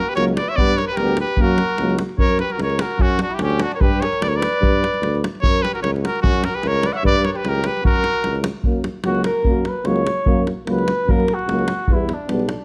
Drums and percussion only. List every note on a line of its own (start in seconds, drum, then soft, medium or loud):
0.17 davul high medium
0.28 davul high soft
0.37 davul high medium
0.48 davul high soft
0.58 davul low medium
0.69 davul high soft
0.78 davul high medium
0.89 davul high soft
0.97 davul high medium
1.08 davul high soft
1.17 davul high medium
1.27 davul high soft
1.37 davul low medium
1.48 davul high soft
1.58 davul high medium
1.69 davul high soft
1.78 davul high medium
1.90 davul high soft
1.99 davul high medium
2.09 davul high soft
2.18 davul low medium
2.29 davul high soft
2.39 davul high soft
2.50 davul high soft
2.60 davul high medium
2.70 davul high soft
2.79 davul high medium
2.91 davul high soft
2.99 davul low medium
3.10 davul high soft
3.19 davul high medium
3.31 davul high soft
3.39 davul high medium
3.50 davul high soft
3.60 davul high medium
3.72 davul high soft
3.81 davul low medium
3.93 davul high soft
4.02 davul high medium
4.13 davul high soft
4.22 davul high medium
4.34 davul high soft
4.42 davul high medium
4.53 davul high soft
4.63 davul low medium
4.73 davul high soft
4.84 davul high medium
4.94 davul high soft
5.03 davul high medium
5.15 davul high soft
5.24 davul high medium
5.35 davul high soft
5.43 davul low medium
5.55 davul high soft
5.65 davul high medium
5.75 davul high soft
5.84 davul high medium
5.96 davul high soft
6.05 davul high medium
6.16 davul high soft
6.24 davul low loud
6.34 davul high soft
6.44 davul high medium
6.54 davul high soft
6.63 davul high medium
6.75 davul high soft
6.83 davul high medium
6.94 davul high soft
7.05 davul low medium
7.16 davul high soft
7.25 davul high medium
7.36 davul high soft
7.45 davul high medium
7.55 davul high soft
7.64 davul high medium
7.77 davul high soft
7.85 davul low medium
7.96 davul high soft
8.04 davul high medium
8.14 davul high soft
8.24 davul high medium
8.35 davul high soft
8.44 davul high medium
8.64 davul low medium
8.84 davul high medium
9.04 davul high medium
9.15 davul high soft
9.24 davul high medium
9.44 davul low medium
9.65 davul high medium
9.85 davul high medium
9.96 davul high soft
10.07 davul high medium
10.26 davul low medium
10.47 davul high medium
10.67 davul high medium
10.78 davul high soft
10.88 davul high medium
11.09 davul low medium
11.20 davul high soft
11.28 davul high medium
11.39 davul high soft
11.49 davul high medium
11.59 davul high soft
11.68 davul high medium
11.79 davul high soft
11.88 davul low medium
12.09 davul high medium
12.29 davul high medium
12.39 davul high soft
12.49 davul high medium